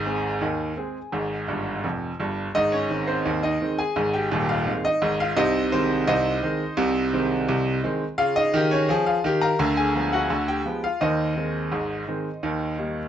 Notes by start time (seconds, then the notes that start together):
Already playing: G#1 G#2 G#5
0.06 G#3 C4 G#4
0.41 D#2 D#3
0.77 G#3 C4 G#4
1.12 G#1 G#2
1.48 G1 G2
1.84 F1 F2
2.20 G1 G2
2.55 G#1 G#2 D#4 D#5
2.72 C#4 C#5
2.90 D#3 G#3 C4
3.07 C4 C5
3.25 D#2 D#3
3.43 D#4 D#5
3.61 D#3 G#3 C4
3.79 G#4 G#5
3.96 G#1 G#2
4.14 G4 G5
4.32 D#1 D#2
4.49 F4 F5
4.66 D#3 G#3 C4
4.85 D#4 D#5
5.02 G#1 G#2
5.20 F4 F5
5.37 C2 C3 D#4 C5 D#5
5.72 D#3 G#3 C4 C5
6.07 C2 C3 D#4 C5 D#5
6.43 D#3 G#3 C4
6.77 C2 C3
7.13 D#3 G#3 C4
7.48 C2 C3
7.84 D#3 G#3 C4
8.18 C#3 F4 F5
8.36 D#4 D#5
8.54 D#3 G4
8.71 C#4 C#5
8.89 F3 G#4
9.06 F4 F5
9.24 D#3 G4
9.41 A#4 F5 A#5
9.59 D2 D3
9.77 G#4 G#5
9.95 F3 G#3 B3
10.13 F#4 F#5
10.30 D2 D3
10.48 G4 G5
10.65 F3 G#3 B3
10.84 F4 F5
11.01 D#2 D#3 D#4 C5 D#5
11.36 D#3 G#3 C4
11.71 G#1 G#2
12.08 D#3 G#3 C4
12.43 D#2 D#3
12.79 D#3 G3 A#3